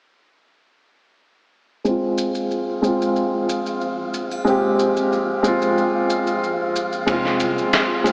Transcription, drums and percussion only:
1.85 maracas soft
2.18 maracas medium
2.35 maracas soft
2.51 maracas soft
2.84 maracas medium
3.02 maracas medium
3.16 maracas soft
3.49 maracas medium
3.66 maracas soft
3.81 maracas soft
4.14 maracas medium
4.31 triangle medium
4.31 maracas soft
4.47 maracas soft
4.79 maracas medium
4.97 maracas soft
5.13 maracas soft
5.44 maracas medium
5.62 maracas medium
5.78 maracas soft
6.10 maracas medium
6.27 maracas soft
6.44 maracas soft
6.76 maracas medium
6.93 maracas soft
7.08 kick loud
7.08 ride medium
7.08 maracas soft
7.25 snare soft
7.40 ride medium
7.40 maracas medium
7.58 maracas medium
7.73 snare loud
7.73 ride medium
7.73 maracas soft
8.06 ride medium
8.06 maracas medium

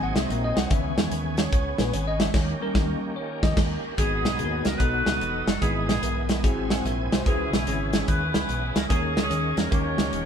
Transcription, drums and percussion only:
0.16 snare loud
0.16 closed hi-hat medium
0.30 closed hi-hat medium
0.57 snare loud
0.57 closed hi-hat medium
0.71 kick loud
0.71 closed hi-hat medium
0.98 snare loud
0.98 closed hi-hat medium
1.12 closed hi-hat loud
1.37 snare loud
1.37 closed hi-hat medium
1.53 kick loud
1.53 closed hi-hat medium
1.78 snare medium
1.78 closed hi-hat medium
1.94 closed hi-hat medium
2.20 snare loud
2.20 closed hi-hat medium
2.34 kick loud
2.34 snare loud
2.34 crash medium
2.75 kick loud
2.75 snare loud
3.43 kick loud
3.43 snare loud
3.57 kick loud
3.57 snare loud
3.57 crash medium
3.98 kick loud
3.98 closed hi-hat medium
4.25 snare loud
4.25 closed hi-hat medium
4.39 closed hi-hat medium
4.65 snare loud
4.65 closed hi-hat medium
4.80 kick medium
4.80 closed hi-hat medium
5.06 snare loud
5.06 closed hi-hat medium
5.21 closed hi-hat medium
5.47 snare loud
5.47 closed hi-hat medium
5.62 kick medium
5.62 closed hi-hat medium
5.89 snare loud
5.89 closed hi-hat medium
6.03 closed hi-hat medium
6.29 snare loud
6.29 closed hi-hat medium
6.44 kick loud
6.44 closed hi-hat medium
6.70 snare loud
6.70 closed hi-hat medium
6.86 closed hi-hat medium
7.12 snare loud
7.12 closed hi-hat medium
7.26 kick loud
7.26 closed hi-hat medium
7.53 snare loud
7.53 closed hi-hat medium
7.67 closed hi-hat medium
7.93 snare loud
7.93 closed hi-hat medium
8.08 kick medium
8.08 closed hi-hat medium
8.34 snare loud
8.34 closed hi-hat medium
8.49 closed hi-hat medium
8.76 snare loud
8.76 closed hi-hat medium
8.90 kick loud
8.90 closed hi-hat medium
9.17 snare loud
9.17 closed hi-hat medium
9.31 closed hi-hat medium
9.57 snare loud
9.57 closed hi-hat medium
9.72 kick loud
9.72 closed hi-hat medium
9.98 snare loud
9.98 closed hi-hat medium
10.13 closed hi-hat medium

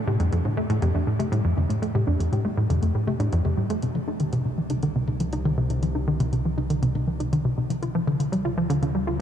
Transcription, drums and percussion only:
0.07 high tom soft
0.20 closed hi-hat medium
0.32 closed hi-hat soft
0.45 high tom soft
0.70 closed hi-hat medium
0.82 closed hi-hat soft
0.82 high tom soft
1.20 closed hi-hat medium
1.20 high tom soft
1.32 closed hi-hat soft
1.58 high tom soft
1.70 closed hi-hat medium
1.83 closed hi-hat soft
1.95 high tom soft
2.20 closed hi-hat medium
2.33 closed hi-hat soft
2.33 high tom soft
2.70 closed hi-hat medium
2.70 high tom soft
2.83 closed hi-hat soft
3.08 high tom soft
3.20 closed hi-hat medium
3.33 closed hi-hat soft
3.45 high tom soft
3.70 closed hi-hat medium
3.82 closed hi-hat soft
3.95 high tom soft
4.20 closed hi-hat medium
4.33 closed hi-hat soft
4.33 high tom soft
4.70 closed hi-hat medium
4.70 high tom soft
4.83 closed hi-hat soft
5.07 high tom soft
5.20 closed hi-hat medium
5.33 closed hi-hat soft
5.45 high tom soft
5.70 closed hi-hat medium
5.83 closed hi-hat soft
5.83 high tom soft
6.20 closed hi-hat medium
6.20 high tom soft
6.33 closed hi-hat soft
6.58 high tom soft
6.70 closed hi-hat medium
6.83 closed hi-hat medium
6.95 high tom soft
7.20 closed hi-hat medium
7.33 closed hi-hat medium
7.33 high tom soft
7.70 closed hi-hat medium
7.70 high tom soft
7.83 closed hi-hat medium
8.08 high tom soft
8.20 closed hi-hat medium
8.33 closed hi-hat medium
8.45 high tom soft
8.70 closed hi-hat medium
8.83 closed hi-hat medium
8.83 high tom soft

